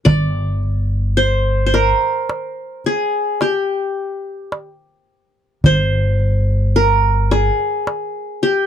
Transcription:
0, 0, Header, 1, 4, 480
1, 0, Start_track
1, 0, Tempo, 1113173
1, 25, Time_signature, 10, 3, 24, 8
1, 3736, End_track
2, 0, Start_track
2, 0, Title_t, "Qanun"
2, 0, Program_c, 0, 107
2, 22, Note_on_c, 0, 74, 92
2, 505, Note_on_c, 0, 72, 83
2, 519, Note_off_c, 0, 74, 0
2, 716, Note_off_c, 0, 72, 0
2, 718, Note_on_c, 0, 72, 66
2, 749, Note_on_c, 0, 70, 82
2, 1173, Note_off_c, 0, 72, 0
2, 1234, Note_on_c, 0, 68, 76
2, 1243, Note_off_c, 0, 70, 0
2, 1473, Note_on_c, 0, 67, 67
2, 1499, Note_off_c, 0, 68, 0
2, 2014, Note_off_c, 0, 67, 0
2, 2439, Note_on_c, 0, 72, 90
2, 2915, Note_on_c, 0, 70, 88
2, 2929, Note_off_c, 0, 72, 0
2, 3153, Note_on_c, 0, 68, 83
2, 3402, Note_off_c, 0, 70, 0
2, 3634, Note_on_c, 0, 67, 82
2, 3660, Note_off_c, 0, 68, 0
2, 3736, Note_off_c, 0, 67, 0
2, 3736, End_track
3, 0, Start_track
3, 0, Title_t, "Upright bass"
3, 0, Program_c, 1, 32
3, 28, Note_on_c, 1, 31, 83
3, 825, Note_off_c, 1, 31, 0
3, 2432, Note_on_c, 1, 31, 76
3, 3228, Note_off_c, 1, 31, 0
3, 3736, End_track
4, 0, Start_track
4, 0, Title_t, "Darbuka"
4, 28, Note_on_c, 9, 64, 98
4, 71, Note_off_c, 9, 64, 0
4, 272, Note_on_c, 9, 62, 23
4, 315, Note_off_c, 9, 62, 0
4, 751, Note_on_c, 9, 63, 54
4, 794, Note_off_c, 9, 63, 0
4, 869, Note_on_c, 9, 62, 24
4, 912, Note_off_c, 9, 62, 0
4, 989, Note_on_c, 9, 63, 65
4, 1033, Note_off_c, 9, 63, 0
4, 1227, Note_on_c, 9, 62, 24
4, 1270, Note_off_c, 9, 62, 0
4, 1470, Note_on_c, 9, 63, 64
4, 1513, Note_off_c, 9, 63, 0
4, 1950, Note_on_c, 9, 63, 59
4, 1993, Note_off_c, 9, 63, 0
4, 2432, Note_on_c, 9, 64, 75
4, 2475, Note_off_c, 9, 64, 0
4, 2671, Note_on_c, 9, 62, 22
4, 2714, Note_off_c, 9, 62, 0
4, 3155, Note_on_c, 9, 63, 59
4, 3198, Note_off_c, 9, 63, 0
4, 3276, Note_on_c, 9, 62, 22
4, 3319, Note_off_c, 9, 62, 0
4, 3395, Note_on_c, 9, 63, 67
4, 3438, Note_off_c, 9, 63, 0
4, 3635, Note_on_c, 9, 62, 20
4, 3678, Note_off_c, 9, 62, 0
4, 3736, End_track
0, 0, End_of_file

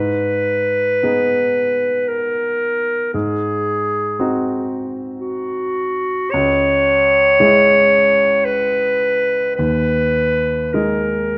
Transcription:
0, 0, Header, 1, 3, 480
1, 0, Start_track
1, 0, Key_signature, 5, "minor"
1, 0, Tempo, 1086957
1, 921, Tempo, 1043478
1, 1405, Time_signature, 3, 2, 24, 8
1, 2361, Tempo, 1113173
1, 2841, Tempo, 1069519
1, 3801, Tempo, 1136364
1, 5031, End_track
2, 0, Start_track
2, 0, Title_t, "Clarinet"
2, 0, Program_c, 0, 71
2, 0, Note_on_c, 0, 71, 59
2, 918, Note_on_c, 0, 70, 54
2, 924, Note_off_c, 0, 71, 0
2, 1402, Note_off_c, 0, 70, 0
2, 1405, Note_on_c, 0, 68, 59
2, 2108, Note_off_c, 0, 68, 0
2, 2355, Note_on_c, 0, 66, 58
2, 2832, Note_on_c, 0, 73, 81
2, 2839, Note_off_c, 0, 66, 0
2, 3792, Note_on_c, 0, 71, 65
2, 3799, Note_off_c, 0, 73, 0
2, 4259, Note_off_c, 0, 71, 0
2, 4261, Note_on_c, 0, 71, 70
2, 4757, Note_on_c, 0, 70, 47
2, 4763, Note_off_c, 0, 71, 0
2, 5031, Note_off_c, 0, 70, 0
2, 5031, End_track
3, 0, Start_track
3, 0, Title_t, "Grand piano"
3, 0, Program_c, 1, 0
3, 0, Note_on_c, 1, 44, 35
3, 39, Control_c, 1, 64, 127
3, 434, Note_off_c, 1, 44, 0
3, 456, Note_on_c, 1, 59, 27
3, 456, Note_on_c, 1, 63, 25
3, 460, Note_on_c, 1, 68, 26
3, 1391, Note_off_c, 1, 59, 0
3, 1391, Note_off_c, 1, 63, 0
3, 1392, Note_off_c, 1, 68, 0
3, 1406, Note_on_c, 1, 44, 37
3, 1413, Control_c, 1, 64, 0
3, 1498, Control_c, 1, 64, 127
3, 1872, Note_off_c, 1, 44, 0
3, 1891, Note_on_c, 1, 60, 30
3, 1891, Note_on_c, 1, 63, 29
3, 1892, Note_on_c, 1, 66, 34
3, 2824, Note_off_c, 1, 60, 0
3, 2824, Note_off_c, 1, 63, 0
3, 2825, Note_off_c, 1, 66, 0
3, 2844, Note_on_c, 1, 37, 47
3, 2847, Control_c, 1, 64, 0
3, 2910, Control_c, 1, 64, 127
3, 3307, Note_off_c, 1, 37, 0
3, 3321, Note_on_c, 1, 56, 34
3, 3325, Note_on_c, 1, 64, 34
3, 3325, Note_on_c, 1, 68, 40
3, 4255, Note_off_c, 1, 56, 0
3, 4256, Note_off_c, 1, 64, 0
3, 4256, Note_off_c, 1, 68, 0
3, 4273, Note_on_c, 1, 39, 38
3, 4279, Control_c, 1, 64, 0
3, 4363, Control_c, 1, 64, 127
3, 4748, Note_off_c, 1, 39, 0
3, 4761, Note_on_c, 1, 56, 27
3, 4763, Note_on_c, 1, 63, 27
3, 4765, Note_on_c, 1, 68, 29
3, 5031, Note_off_c, 1, 56, 0
3, 5031, Note_off_c, 1, 63, 0
3, 5031, Note_off_c, 1, 68, 0
3, 5031, End_track
0, 0, End_of_file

